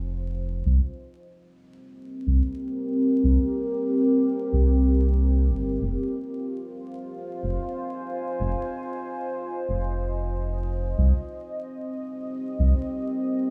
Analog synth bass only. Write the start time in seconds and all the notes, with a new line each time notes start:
Already playing: F1
0.66 C2
2.27 C2
3.24 C2
4.53 C2
5.50 G1
5.82 F1
7.43 F1
8.40 F1
9.69 F1
10.98 C2
12.59 C2